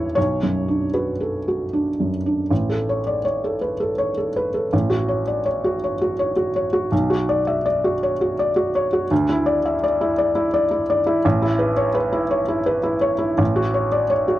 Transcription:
Already playing: A1 E2 E4 F#4 C#5
0.15 B1 C#5
0.43 F#2
0.68 D4
0.94 F#4 B4
1.20 A4
1.48 F#4
1.73 D4
2.00 F#2
2.26 D4
2.50 A1
2.69 A4
2.89 C#5
3.07 D5
3.25 C#5
3.44 A4
3.61 B4
3.80 A4
3.98 C#5
4.17 A4
4.36 B4
4.54 A4
4.73 A1
4.90 F#4
5.08 C#5
5.27 D5
5.46 C#5
5.64 F#4
5.84 C#5
6.02 F#4
6.19 C#5
6.36 F#4
6.56 C#5
6.73 F#4
6.92 B1
7.10 F#4
7.29 D5
7.47 E5
7.66 D5
7.84 F#4
8.03 C#5
8.21 F#4
8.39 D5
8.56 F#4
8.75 C#5
8.93 F#4
9.11 D2
9.29 E4
9.46 D5
9.65 E5
9.84 D5
10.01 E4
10.18 D5
10.35 E4
10.54 D5
10.71 E4
10.90 D5
11.07 E4
11.25 A1
11.42 E4
11.59 B4
11.77 C#5
11.95 B4
12.12 E4
12.31 C#5
12.48 E4
12.66 B4
12.83 E4
13.01 C#5
13.18 E4
13.38 A1
13.56 F#4
13.74 C#5
13.92 D5
14.10 C#5
14.28 F#4

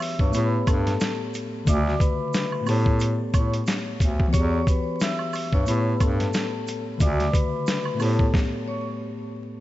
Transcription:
Already playing: E3 B3 F#4 G4 C#5 E5 E6
0.00 open hi-hat, high woodblock, shaker
0.19 G2 C#5 C#6, kick
0.30 A2 A3, shaker
0.34 A2 B3 G4 B4 B5, closed hi-hat
0.40 B4
0.46 C#5
0.67 G2 A4 A5, kick, closed hi-hat, high woodblock, shaker
0.87 snare, closed hi-hat
1.00 snare, closed hi-hat, shaker
1.34 closed hi-hat, shaker
1.65 D2 C#3 D3 A3 F4 D5 D6, kick, closed hi-hat, shaker
1.70 E5
1.75 F#4
1.87 snare
1.99 B4 B5, kick, closed hi-hat, shaker
2.34 snare, closed hi-hat, shaker
2.52 high woodblock
2.60 A2 A3
2.66 A2 B3 G4 A4 A5, open hi-hat, high woodblock, shaker
2.70 C5
2.77 C#5
2.86 kick
3.00 closed hi-hat, shaker
3.33 A2 C#5 C#6, kick, closed hi-hat, high woodblock, shaker
3.54 closed hi-hat
3.67 snare, closed hi-hat, shaker
4.00 D2, kick, closed hi-hat, shaker
4.20 kick
4.28 E3 B3
4.33 E2 F#4 G4 C#5 C#6, kick, closed hi-hat, shaker
4.38 C#5
4.67 B4 B5, kick, closed hi-hat, shaker
5.00 E5 E6, snare, closed hi-hat, shaker
5.19 high woodblock
5.33 open hi-hat, high woodblock, shaker
5.53 G2 C#5 C#6, kick
5.63 A2 A3, shaker
5.67 A2 B3 G4 B4 B5, closed hi-hat
5.73 B4
5.80 C#5
6.00 G2 A4 A5, kick, closed hi-hat, high woodblock, shaker
6.20 snare, closed hi-hat
6.33 snare, closed hi-hat, shaker
6.67 closed hi-hat, shaker
6.98 D2 C#3 D3 A3 F4 D5, kick, closed hi-hat, shaker
7.02 E5 D6
7.08 F#4
7.20 snare, closed hi-hat
7.32 B4 B5, kick, closed hi-hat, shaker
7.67 snare, closed hi-hat, shaker
7.85 high woodblock
7.94 A2 A3
7.99 A2 B3 G4 A4 A5, open hi-hat, high woodblock, shaker
8.04 C5
8.10 C#5
8.19 kick
8.34 kick, snare
8.68 C#5 C#6

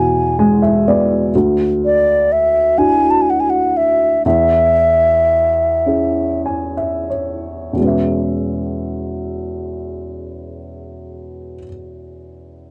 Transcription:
Already playing: E2 B2 E3 G#5
0.39 G#3 G#5
0.62 E5
0.88 B3 D5
1.35 D2
1.85 D5
2.32 E5
2.78 D4 E4 F#4 G#5
3.11 A5
3.22 G#5
3.30 F#5
3.40 G#5
3.50 F#5
3.77 E5
4.26 E2 E5
5.86 C#4 E4 G#4
6.46 G#5
6.77 E5
7.10 C#5
7.73 E2 B2
7.79 G#3 C#4
7.85 B4 E5

